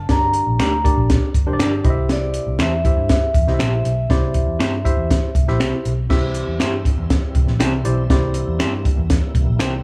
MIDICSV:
0, 0, Header, 1, 7, 480
1, 0, Start_track
1, 0, Tempo, 500417
1, 91, Time_signature, 4, 2, 24, 8
1, 9431, End_track
2, 0, Start_track
2, 0, Title_t, "Vibraphone"
2, 0, Program_c, 0, 11
2, 0, Note_on_c, 0, 81, 89
2, 101, Note_off_c, 0, 81, 0
2, 108, Note_on_c, 0, 82, 102
2, 1021, Note_off_c, 0, 82, 0
2, 2038, Note_on_c, 0, 74, 106
2, 2507, Note_on_c, 0, 76, 103
2, 2518, Note_off_c, 0, 74, 0
2, 2975, Note_off_c, 0, 76, 0
2, 2987, Note_on_c, 0, 76, 100
2, 5341, Note_off_c, 0, 76, 0
2, 9431, End_track
3, 0, Start_track
3, 0, Title_t, "Tine electric piano"
3, 0, Program_c, 1, 4
3, 89, Note_on_c, 1, 62, 70
3, 93, Note_on_c, 1, 67, 61
3, 94, Note_on_c, 1, 70, 64
3, 94, Note_on_c, 1, 74, 78
3, 597, Note_off_c, 1, 62, 0
3, 599, Note_off_c, 1, 67, 0
3, 599, Note_off_c, 1, 70, 0
3, 599, Note_off_c, 1, 74, 0
3, 808, Note_on_c, 1, 67, 82
3, 809, Note_on_c, 1, 62, 81
3, 811, Note_on_c, 1, 74, 91
3, 812, Note_on_c, 1, 70, 77
3, 1232, Note_off_c, 1, 62, 0
3, 1232, Note_off_c, 1, 67, 0
3, 1234, Note_off_c, 1, 70, 0
3, 1234, Note_off_c, 1, 74, 0
3, 1408, Note_on_c, 1, 62, 91
3, 1409, Note_on_c, 1, 67, 75
3, 1410, Note_on_c, 1, 70, 77
3, 1415, Note_on_c, 1, 72, 78
3, 1470, Note_off_c, 1, 72, 0
3, 1470, Note_on_c, 1, 74, 99
3, 1750, Note_off_c, 1, 67, 0
3, 1762, Note_on_c, 1, 67, 78
3, 1768, Note_on_c, 1, 72, 73
3, 1769, Note_off_c, 1, 62, 0
3, 1769, Note_on_c, 1, 64, 85
3, 1770, Note_off_c, 1, 70, 0
3, 1772, Note_on_c, 1, 75, 76
3, 1801, Note_off_c, 1, 74, 0
3, 1824, Note_on_c, 1, 76, 88
3, 1829, Note_off_c, 1, 75, 0
3, 2534, Note_off_c, 1, 67, 0
3, 2538, Note_off_c, 1, 64, 0
3, 2538, Note_off_c, 1, 72, 0
3, 2566, Note_off_c, 1, 76, 0
3, 2728, Note_on_c, 1, 64, 70
3, 2734, Note_on_c, 1, 67, 68
3, 2738, Note_on_c, 1, 72, 67
3, 2740, Note_on_c, 1, 76, 75
3, 3152, Note_off_c, 1, 64, 0
3, 3155, Note_off_c, 1, 67, 0
3, 3157, Note_off_c, 1, 72, 0
3, 3158, Note_off_c, 1, 76, 0
3, 3336, Note_on_c, 1, 64, 77
3, 3337, Note_on_c, 1, 67, 70
3, 3339, Note_on_c, 1, 72, 71
3, 3343, Note_on_c, 1, 75, 68
3, 3395, Note_off_c, 1, 75, 0
3, 3398, Note_on_c, 1, 76, 77
3, 3756, Note_off_c, 1, 64, 0
3, 3757, Note_off_c, 1, 67, 0
3, 3758, Note_off_c, 1, 72, 0
3, 3787, Note_off_c, 1, 76, 0
3, 3931, Note_on_c, 1, 72, 79
3, 3934, Note_on_c, 1, 64, 93
3, 3934, Note_on_c, 1, 67, 76
3, 3939, Note_on_c, 1, 74, 94
3, 4438, Note_off_c, 1, 72, 0
3, 4440, Note_off_c, 1, 64, 0
3, 4440, Note_off_c, 1, 67, 0
3, 4442, Note_off_c, 1, 74, 0
3, 4648, Note_on_c, 1, 64, 82
3, 4650, Note_on_c, 1, 67, 74
3, 4653, Note_on_c, 1, 76, 94
3, 4654, Note_on_c, 1, 72, 85
3, 5072, Note_off_c, 1, 64, 0
3, 5073, Note_off_c, 1, 67, 0
3, 5075, Note_off_c, 1, 72, 0
3, 5075, Note_off_c, 1, 76, 0
3, 5260, Note_on_c, 1, 64, 93
3, 5260, Note_on_c, 1, 72, 83
3, 5261, Note_on_c, 1, 67, 84
3, 5263, Note_on_c, 1, 76, 103
3, 5678, Note_off_c, 1, 64, 0
3, 5678, Note_off_c, 1, 72, 0
3, 5679, Note_off_c, 1, 67, 0
3, 5680, Note_off_c, 1, 76, 0
3, 5845, Note_on_c, 1, 64, 82
3, 5849, Note_on_c, 1, 72, 75
3, 5850, Note_on_c, 1, 67, 83
3, 5851, Note_on_c, 1, 76, 103
3, 6524, Note_off_c, 1, 64, 0
3, 6526, Note_off_c, 1, 72, 0
3, 6527, Note_off_c, 1, 67, 0
3, 6527, Note_off_c, 1, 76, 0
3, 7528, Note_on_c, 1, 67, 75
3, 7529, Note_on_c, 1, 64, 78
3, 7531, Note_on_c, 1, 72, 71
3, 7531, Note_on_c, 1, 74, 90
3, 7698, Note_off_c, 1, 67, 0
3, 7699, Note_off_c, 1, 64, 0
3, 7700, Note_off_c, 1, 72, 0
3, 7700, Note_off_c, 1, 74, 0
3, 7776, Note_on_c, 1, 64, 88
3, 7777, Note_on_c, 1, 72, 80
3, 7778, Note_on_c, 1, 74, 98
3, 7780, Note_on_c, 1, 67, 76
3, 8449, Note_off_c, 1, 64, 0
3, 8449, Note_off_c, 1, 72, 0
3, 8450, Note_off_c, 1, 67, 0
3, 8450, Note_off_c, 1, 74, 0
3, 9217, Note_on_c, 1, 79, 68
3, 9220, Note_on_c, 1, 70, 52
3, 9431, Note_off_c, 1, 70, 0
3, 9431, Note_off_c, 1, 79, 0
3, 9431, End_track
4, 0, Start_track
4, 0, Title_t, "Clean electric guitar"
4, 0, Program_c, 2, 27
4, 569, Note_on_c, 2, 62, 78
4, 576, Note_on_c, 2, 67, 90
4, 578, Note_on_c, 2, 70, 92
4, 582, Note_on_c, 2, 74, 89
4, 683, Note_off_c, 2, 62, 0
4, 687, Note_off_c, 2, 67, 0
4, 688, Note_off_c, 2, 70, 0
4, 690, Note_off_c, 2, 74, 0
4, 1528, Note_on_c, 2, 62, 81
4, 1534, Note_on_c, 2, 67, 83
4, 1540, Note_on_c, 2, 70, 75
4, 1541, Note_on_c, 2, 74, 90
4, 1643, Note_off_c, 2, 62, 0
4, 1646, Note_off_c, 2, 67, 0
4, 1649, Note_off_c, 2, 70, 0
4, 1650, Note_off_c, 2, 74, 0
4, 2485, Note_on_c, 2, 60, 82
4, 2488, Note_on_c, 2, 64, 73
4, 2493, Note_on_c, 2, 67, 82
4, 2497, Note_on_c, 2, 72, 83
4, 2601, Note_off_c, 2, 60, 0
4, 2603, Note_off_c, 2, 64, 0
4, 2605, Note_off_c, 2, 67, 0
4, 2608, Note_off_c, 2, 72, 0
4, 3443, Note_on_c, 2, 60, 73
4, 3448, Note_on_c, 2, 64, 79
4, 3454, Note_on_c, 2, 67, 89
4, 3456, Note_on_c, 2, 72, 87
4, 3560, Note_off_c, 2, 60, 0
4, 3563, Note_off_c, 2, 64, 0
4, 3566, Note_off_c, 2, 67, 0
4, 3567, Note_off_c, 2, 72, 0
4, 4406, Note_on_c, 2, 60, 77
4, 4409, Note_on_c, 2, 64, 78
4, 4415, Note_on_c, 2, 67, 87
4, 4417, Note_on_c, 2, 72, 91
4, 4522, Note_off_c, 2, 60, 0
4, 4523, Note_off_c, 2, 64, 0
4, 4527, Note_off_c, 2, 67, 0
4, 4528, Note_off_c, 2, 72, 0
4, 5370, Note_on_c, 2, 60, 86
4, 5373, Note_on_c, 2, 64, 93
4, 5377, Note_on_c, 2, 67, 81
4, 5381, Note_on_c, 2, 72, 94
4, 5484, Note_off_c, 2, 60, 0
4, 5486, Note_off_c, 2, 64, 0
4, 5487, Note_off_c, 2, 67, 0
4, 5490, Note_off_c, 2, 72, 0
4, 6323, Note_on_c, 2, 60, 79
4, 6327, Note_on_c, 2, 64, 91
4, 6331, Note_on_c, 2, 67, 94
4, 6335, Note_on_c, 2, 72, 94
4, 6441, Note_off_c, 2, 60, 0
4, 6443, Note_off_c, 2, 64, 0
4, 6445, Note_off_c, 2, 67, 0
4, 6446, Note_off_c, 2, 72, 0
4, 7284, Note_on_c, 2, 60, 83
4, 7289, Note_on_c, 2, 64, 88
4, 7294, Note_on_c, 2, 67, 100
4, 7298, Note_on_c, 2, 72, 94
4, 7401, Note_off_c, 2, 60, 0
4, 7404, Note_off_c, 2, 64, 0
4, 7406, Note_off_c, 2, 67, 0
4, 7408, Note_off_c, 2, 72, 0
4, 8241, Note_on_c, 2, 60, 89
4, 8247, Note_on_c, 2, 64, 93
4, 8251, Note_on_c, 2, 67, 94
4, 8254, Note_on_c, 2, 72, 99
4, 8359, Note_off_c, 2, 60, 0
4, 8362, Note_off_c, 2, 64, 0
4, 8364, Note_off_c, 2, 67, 0
4, 8366, Note_off_c, 2, 72, 0
4, 9201, Note_on_c, 2, 60, 81
4, 9207, Note_on_c, 2, 64, 91
4, 9210, Note_on_c, 2, 67, 86
4, 9214, Note_on_c, 2, 72, 89
4, 9318, Note_off_c, 2, 60, 0
4, 9321, Note_off_c, 2, 64, 0
4, 9323, Note_off_c, 2, 67, 0
4, 9324, Note_off_c, 2, 72, 0
4, 9431, End_track
5, 0, Start_track
5, 0, Title_t, "Tonewheel organ"
5, 0, Program_c, 3, 16
5, 5855, Note_on_c, 3, 55, 56
5, 5856, Note_on_c, 3, 52, 65
5, 5857, Note_on_c, 3, 60, 59
5, 5857, Note_on_c, 3, 64, 74
5, 7754, Note_off_c, 3, 60, 0
5, 7773, Note_on_c, 3, 58, 60
5, 9431, Note_off_c, 3, 52, 0
5, 9431, Note_off_c, 3, 55, 0
5, 9431, Note_off_c, 3, 58, 0
5, 9431, Note_off_c, 3, 64, 0
5, 9431, End_track
6, 0, Start_track
6, 0, Title_t, "Picked electric bass"
6, 0, Program_c, 4, 34
6, 88, Note_on_c, 4, 31, 86
6, 386, Note_off_c, 4, 31, 0
6, 449, Note_on_c, 4, 34, 78
6, 549, Note_off_c, 4, 34, 0
6, 567, Note_on_c, 4, 38, 82
6, 866, Note_off_c, 4, 38, 0
6, 922, Note_on_c, 4, 34, 94
6, 1124, Note_off_c, 4, 34, 0
6, 1290, Note_on_c, 4, 31, 88
6, 1389, Note_off_c, 4, 31, 0
6, 1409, Note_on_c, 4, 29, 89
6, 1509, Note_off_c, 4, 29, 0
6, 1527, Note_on_c, 4, 31, 95
6, 1726, Note_off_c, 4, 31, 0
6, 1773, Note_on_c, 4, 36, 96
6, 2267, Note_off_c, 4, 36, 0
6, 2366, Note_on_c, 4, 36, 84
6, 2467, Note_off_c, 4, 36, 0
6, 2483, Note_on_c, 4, 40, 93
6, 2783, Note_off_c, 4, 40, 0
6, 2847, Note_on_c, 4, 43, 99
6, 3047, Note_off_c, 4, 43, 0
6, 3211, Note_on_c, 4, 40, 82
6, 3310, Note_off_c, 4, 40, 0
6, 3331, Note_on_c, 4, 36, 82
6, 3430, Note_off_c, 4, 36, 0
6, 3454, Note_on_c, 4, 34, 90
6, 3651, Note_off_c, 4, 34, 0
6, 3691, Note_on_c, 4, 35, 81
6, 3889, Note_off_c, 4, 35, 0
6, 3927, Note_on_c, 4, 36, 99
6, 4226, Note_off_c, 4, 36, 0
6, 4282, Note_on_c, 4, 40, 77
6, 4385, Note_off_c, 4, 40, 0
6, 4405, Note_on_c, 4, 43, 85
6, 4705, Note_off_c, 4, 43, 0
6, 4768, Note_on_c, 4, 40, 91
6, 4967, Note_off_c, 4, 40, 0
6, 5131, Note_on_c, 4, 36, 73
6, 5230, Note_off_c, 4, 36, 0
6, 5261, Note_on_c, 4, 34, 83
6, 5356, Note_off_c, 4, 34, 0
6, 5617, Note_on_c, 4, 35, 92
6, 5813, Note_off_c, 4, 35, 0
6, 5850, Note_on_c, 4, 36, 92
6, 6148, Note_off_c, 4, 36, 0
6, 6211, Note_on_c, 4, 40, 73
6, 6310, Note_off_c, 4, 40, 0
6, 6328, Note_on_c, 4, 43, 82
6, 6626, Note_off_c, 4, 43, 0
6, 6695, Note_on_c, 4, 40, 91
6, 6891, Note_off_c, 4, 40, 0
6, 7046, Note_on_c, 4, 36, 79
6, 7147, Note_off_c, 4, 36, 0
6, 7169, Note_on_c, 4, 34, 96
6, 7269, Note_off_c, 4, 34, 0
6, 7287, Note_on_c, 4, 36, 103
6, 7486, Note_off_c, 4, 36, 0
6, 7527, Note_on_c, 4, 35, 81
6, 7726, Note_off_c, 4, 35, 0
6, 7769, Note_on_c, 4, 36, 102
6, 8066, Note_off_c, 4, 36, 0
6, 8130, Note_on_c, 4, 40, 86
6, 8229, Note_off_c, 4, 40, 0
6, 8248, Note_on_c, 4, 43, 79
6, 8545, Note_off_c, 4, 43, 0
6, 8606, Note_on_c, 4, 40, 89
6, 8805, Note_off_c, 4, 40, 0
6, 8962, Note_on_c, 4, 36, 86
6, 9064, Note_off_c, 4, 36, 0
6, 9083, Note_on_c, 4, 34, 86
6, 9184, Note_off_c, 4, 34, 0
6, 9211, Note_on_c, 4, 36, 80
6, 9407, Note_off_c, 4, 36, 0
6, 9431, End_track
7, 0, Start_track
7, 0, Title_t, "Drums"
7, 85, Note_on_c, 9, 38, 99
7, 87, Note_on_c, 9, 42, 69
7, 89, Note_on_c, 9, 36, 90
7, 181, Note_off_c, 9, 38, 0
7, 183, Note_off_c, 9, 42, 0
7, 185, Note_off_c, 9, 36, 0
7, 321, Note_on_c, 9, 42, 63
7, 417, Note_off_c, 9, 42, 0
7, 572, Note_on_c, 9, 26, 88
7, 573, Note_on_c, 9, 38, 92
7, 574, Note_on_c, 9, 42, 71
7, 668, Note_off_c, 9, 26, 0
7, 669, Note_off_c, 9, 38, 0
7, 669, Note_off_c, 9, 42, 0
7, 815, Note_on_c, 9, 36, 83
7, 821, Note_on_c, 9, 42, 74
7, 911, Note_off_c, 9, 36, 0
7, 917, Note_off_c, 9, 42, 0
7, 1053, Note_on_c, 9, 38, 106
7, 1053, Note_on_c, 9, 42, 91
7, 1055, Note_on_c, 9, 36, 102
7, 1148, Note_off_c, 9, 42, 0
7, 1149, Note_off_c, 9, 38, 0
7, 1151, Note_off_c, 9, 36, 0
7, 1290, Note_on_c, 9, 36, 82
7, 1292, Note_on_c, 9, 42, 69
7, 1386, Note_off_c, 9, 36, 0
7, 1388, Note_off_c, 9, 42, 0
7, 1530, Note_on_c, 9, 38, 103
7, 1534, Note_on_c, 9, 42, 105
7, 1535, Note_on_c, 9, 26, 99
7, 1626, Note_off_c, 9, 38, 0
7, 1630, Note_off_c, 9, 42, 0
7, 1631, Note_off_c, 9, 26, 0
7, 1770, Note_on_c, 9, 42, 70
7, 1771, Note_on_c, 9, 36, 102
7, 1866, Note_off_c, 9, 42, 0
7, 1867, Note_off_c, 9, 36, 0
7, 2008, Note_on_c, 9, 38, 98
7, 2010, Note_on_c, 9, 42, 77
7, 2104, Note_off_c, 9, 38, 0
7, 2105, Note_off_c, 9, 42, 0
7, 2242, Note_on_c, 9, 42, 67
7, 2338, Note_off_c, 9, 42, 0
7, 2482, Note_on_c, 9, 38, 98
7, 2483, Note_on_c, 9, 42, 69
7, 2492, Note_on_c, 9, 26, 89
7, 2578, Note_off_c, 9, 38, 0
7, 2579, Note_off_c, 9, 42, 0
7, 2588, Note_off_c, 9, 26, 0
7, 2732, Note_on_c, 9, 36, 81
7, 2734, Note_on_c, 9, 42, 76
7, 2828, Note_off_c, 9, 36, 0
7, 2830, Note_off_c, 9, 42, 0
7, 2968, Note_on_c, 9, 42, 91
7, 2969, Note_on_c, 9, 38, 114
7, 2973, Note_on_c, 9, 36, 96
7, 3064, Note_off_c, 9, 42, 0
7, 3065, Note_off_c, 9, 38, 0
7, 3069, Note_off_c, 9, 36, 0
7, 3208, Note_on_c, 9, 36, 88
7, 3211, Note_on_c, 9, 42, 69
7, 3304, Note_off_c, 9, 36, 0
7, 3307, Note_off_c, 9, 42, 0
7, 3332, Note_on_c, 9, 38, 37
7, 3428, Note_off_c, 9, 38, 0
7, 3449, Note_on_c, 9, 38, 102
7, 3453, Note_on_c, 9, 42, 93
7, 3454, Note_on_c, 9, 26, 96
7, 3545, Note_off_c, 9, 38, 0
7, 3549, Note_off_c, 9, 42, 0
7, 3550, Note_off_c, 9, 26, 0
7, 3695, Note_on_c, 9, 42, 75
7, 3791, Note_off_c, 9, 42, 0
7, 3932, Note_on_c, 9, 36, 102
7, 3936, Note_on_c, 9, 38, 102
7, 3938, Note_on_c, 9, 42, 72
7, 4028, Note_off_c, 9, 36, 0
7, 4032, Note_off_c, 9, 38, 0
7, 4034, Note_off_c, 9, 42, 0
7, 4166, Note_on_c, 9, 42, 76
7, 4169, Note_on_c, 9, 36, 77
7, 4262, Note_off_c, 9, 42, 0
7, 4265, Note_off_c, 9, 36, 0
7, 4416, Note_on_c, 9, 26, 91
7, 4417, Note_on_c, 9, 38, 104
7, 4417, Note_on_c, 9, 42, 77
7, 4512, Note_off_c, 9, 26, 0
7, 4513, Note_off_c, 9, 38, 0
7, 4513, Note_off_c, 9, 42, 0
7, 4656, Note_on_c, 9, 36, 80
7, 4663, Note_on_c, 9, 42, 77
7, 4752, Note_off_c, 9, 36, 0
7, 4759, Note_off_c, 9, 42, 0
7, 4897, Note_on_c, 9, 36, 100
7, 4899, Note_on_c, 9, 42, 94
7, 4900, Note_on_c, 9, 38, 113
7, 4993, Note_off_c, 9, 36, 0
7, 4995, Note_off_c, 9, 42, 0
7, 4996, Note_off_c, 9, 38, 0
7, 5131, Note_on_c, 9, 36, 85
7, 5136, Note_on_c, 9, 42, 69
7, 5227, Note_off_c, 9, 36, 0
7, 5232, Note_off_c, 9, 42, 0
7, 5254, Note_on_c, 9, 38, 37
7, 5350, Note_off_c, 9, 38, 0
7, 5373, Note_on_c, 9, 38, 100
7, 5377, Note_on_c, 9, 42, 96
7, 5378, Note_on_c, 9, 26, 99
7, 5469, Note_off_c, 9, 38, 0
7, 5473, Note_off_c, 9, 42, 0
7, 5474, Note_off_c, 9, 26, 0
7, 5614, Note_on_c, 9, 42, 76
7, 5710, Note_off_c, 9, 42, 0
7, 5852, Note_on_c, 9, 36, 102
7, 5856, Note_on_c, 9, 38, 97
7, 5856, Note_on_c, 9, 49, 78
7, 5948, Note_off_c, 9, 36, 0
7, 5952, Note_off_c, 9, 38, 0
7, 5952, Note_off_c, 9, 49, 0
7, 6086, Note_on_c, 9, 42, 67
7, 6182, Note_off_c, 9, 42, 0
7, 6330, Note_on_c, 9, 38, 96
7, 6330, Note_on_c, 9, 42, 79
7, 6338, Note_on_c, 9, 26, 86
7, 6426, Note_off_c, 9, 38, 0
7, 6426, Note_off_c, 9, 42, 0
7, 6434, Note_off_c, 9, 26, 0
7, 6573, Note_on_c, 9, 36, 84
7, 6578, Note_on_c, 9, 42, 74
7, 6669, Note_off_c, 9, 36, 0
7, 6674, Note_off_c, 9, 42, 0
7, 6813, Note_on_c, 9, 38, 113
7, 6813, Note_on_c, 9, 42, 89
7, 6814, Note_on_c, 9, 36, 93
7, 6908, Note_off_c, 9, 42, 0
7, 6909, Note_off_c, 9, 38, 0
7, 6910, Note_off_c, 9, 36, 0
7, 7048, Note_on_c, 9, 36, 82
7, 7050, Note_on_c, 9, 42, 71
7, 7144, Note_off_c, 9, 36, 0
7, 7146, Note_off_c, 9, 42, 0
7, 7168, Note_on_c, 9, 38, 35
7, 7264, Note_off_c, 9, 38, 0
7, 7290, Note_on_c, 9, 38, 110
7, 7295, Note_on_c, 9, 26, 94
7, 7295, Note_on_c, 9, 42, 94
7, 7386, Note_off_c, 9, 38, 0
7, 7391, Note_off_c, 9, 26, 0
7, 7391, Note_off_c, 9, 42, 0
7, 7529, Note_on_c, 9, 42, 69
7, 7625, Note_off_c, 9, 42, 0
7, 7769, Note_on_c, 9, 36, 96
7, 7772, Note_on_c, 9, 38, 106
7, 7773, Note_on_c, 9, 42, 72
7, 7865, Note_off_c, 9, 36, 0
7, 7868, Note_off_c, 9, 38, 0
7, 7869, Note_off_c, 9, 42, 0
7, 8000, Note_on_c, 9, 42, 72
7, 8096, Note_off_c, 9, 42, 0
7, 8247, Note_on_c, 9, 38, 110
7, 8247, Note_on_c, 9, 42, 76
7, 8249, Note_on_c, 9, 26, 91
7, 8343, Note_off_c, 9, 38, 0
7, 8343, Note_off_c, 9, 42, 0
7, 8345, Note_off_c, 9, 26, 0
7, 8491, Note_on_c, 9, 36, 84
7, 8493, Note_on_c, 9, 42, 73
7, 8587, Note_off_c, 9, 36, 0
7, 8589, Note_off_c, 9, 42, 0
7, 8728, Note_on_c, 9, 42, 98
7, 8729, Note_on_c, 9, 38, 117
7, 8731, Note_on_c, 9, 36, 101
7, 8823, Note_off_c, 9, 42, 0
7, 8824, Note_off_c, 9, 38, 0
7, 8827, Note_off_c, 9, 36, 0
7, 8967, Note_on_c, 9, 36, 85
7, 8970, Note_on_c, 9, 42, 71
7, 9063, Note_off_c, 9, 36, 0
7, 9066, Note_off_c, 9, 42, 0
7, 9203, Note_on_c, 9, 38, 98
7, 9208, Note_on_c, 9, 42, 105
7, 9211, Note_on_c, 9, 26, 100
7, 9299, Note_off_c, 9, 38, 0
7, 9303, Note_off_c, 9, 42, 0
7, 9307, Note_off_c, 9, 26, 0
7, 9431, End_track
0, 0, End_of_file